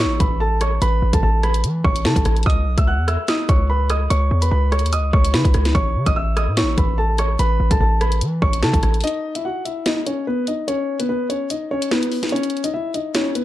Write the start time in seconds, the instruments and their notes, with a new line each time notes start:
0.00 grand piano C#5 C#6
0.05 808-style bass A1
0.20 808-style bass A1, grand piano B4 B5, kick, closed hi-hat
0.40 grand piano A4 A5
0.61 grand piano C#5 C#6, cross-stick, closed hi-hat
0.82 808-style bass A1, grand piano B4 B5, closed hi-hat
1.02 808-style bass A1
1.13 808-style bass A1, grand piano A4 A5, kick, closed hi-hat
1.23 808-style bass A1, grand piano A4 A5
1.43 grand piano B4 B5, cross-stick, closed hi-hat
1.54 closed hi-hat
1.64 808-style bass E3, closed hi-hat
1.84 808-style bass A1, grand piano C#5 C#6, kick
1.96 closed hi-hat
2.05 808-style bass C#3, grand piano A4 A5, snare
2.16 808-style bass A1, kick, closed hi-hat
2.25 808-style bass A1, cross-stick, closed hi-hat
2.37 closed hi-hat
2.43 808-style bass C#2, grand piano D#6, kick, closed hi-hat
2.47 grand piano D#5, closed hi-hat
2.67 808-style bass B1
2.78 808-style bass C#2, grand piano E5 E6, kick, closed hi-hat
2.87 grand piano F#5 F#6
2.98 808-style bass E2
3.08 grand piano E5 E6, cross-stick, closed hi-hat
3.28 grand piano D#5 D#6, snare, closed hi-hat
3.49 808-style bass C#2, grand piano C#5 C#6, kick, closed hi-hat
3.70 grand piano B4 B5
3.90 grand piano D#5 D#6, cross-stick, closed hi-hat
4.10 808-style bass C#2, grand piano C#5 C#6, closed hi-hat
4.31 808-style bass E2
4.42 grand piano B4 B5, closed hi-hat
4.51 808-style bass C#2, grand piano B4 B5
4.72 grand piano C#5 C#6, cross-stick, closed hi-hat
4.79 808-style bass D#2, closed hi-hat
4.86 closed hi-hat
4.93 grand piano D#5 D#6, closed hi-hat
4.98 808-style bass C#2
5.13 808-style bass C#2, grand piano C#5 C#6, kick
5.25 closed hi-hat
5.34 808-style bass C#3, grand piano B4 B5, snare
5.45 808-style bass C#2, kick, closed hi-hat
5.54 808-style bass C#2, cross-stick, closed hi-hat
5.65 snare, closed hi-hat
5.75 808-style bass A1, grand piano C#5 C#6, kick, closed hi-hat
5.96 808-style bass C#3
6.06 808-style bass A1, grand piano D#5 D#6, kick, closed hi-hat
6.16 grand piano E5 E6
6.37 grand piano D#5 D#6, cross-stick, closed hi-hat
6.47 808-style bass A2
6.57 grand piano C#5 C#6, snare, closed hi-hat
6.63 808-style bass A1
6.78 808-style bass A1, grand piano B4 B5, kick, closed hi-hat
6.98 grand piano A4 A5
7.18 grand piano C#5 C#6, cross-stick, closed hi-hat
7.39 808-style bass A1, grand piano B4 B5, closed hi-hat
7.60 808-style bass A1
7.71 808-style bass A1, grand piano A4 A5, kick, closed hi-hat
7.80 808-style bass A1, grand piano A4 A5
8.01 grand piano B4 B5, cross-stick, closed hi-hat
8.12 closed hi-hat
8.21 808-style bass E3, closed hi-hat
8.42 808-style bass A1, grand piano C#5 C#6, kick
8.53 closed hi-hat
8.63 808-style bass C#3, grand piano A4 A5, snare
8.73 808-style bass A1, kick, closed hi-hat
8.83 808-style bass A1, cross-stick, closed hi-hat
8.94 closed hi-hat
9.01 closed hi-hat
9.04 grand piano D#4 D#5, closed hi-hat
9.07 closed hi-hat
9.35 grand piano E4 E5, closed hi-hat
9.45 grand piano F#4 F#5
9.65 grand piano E4 E5, closed hi-hat
9.86 grand piano D#4 D#5, snare, closed hi-hat
10.07 grand piano C#4 C#5, closed hi-hat
10.27 grand piano B3 B4
10.47 grand piano D#4 D#5, closed hi-hat
10.68 grand piano C#4 C#5, closed hi-hat
11.00 grand piano B3 B4, closed hi-hat
11.09 grand piano B3 B4
11.30 grand piano C#4 C#5, closed hi-hat
11.50 grand piano D#4 D#5, closed hi-hat
11.71 grand piano C#4 C#5
11.82 closed hi-hat
11.91 grand piano B3 B4, snare
12.03 closed hi-hat
12.12 open hi-hat
12.23 snare, closed hi-hat
12.29 grand piano C#4 C#5, closed hi-hat
12.36 closed hi-hat
12.43 closed hi-hat
12.50 closed hi-hat
12.57 closed hi-hat
12.64 grand piano D#4 D#5, closed hi-hat
12.74 grand piano E4 E5
12.94 grand piano D#4 D#5, closed hi-hat
13.15 grand piano C#4 C#5, snare, closed hi-hat
13.35 grand piano B3 B4, closed hi-hat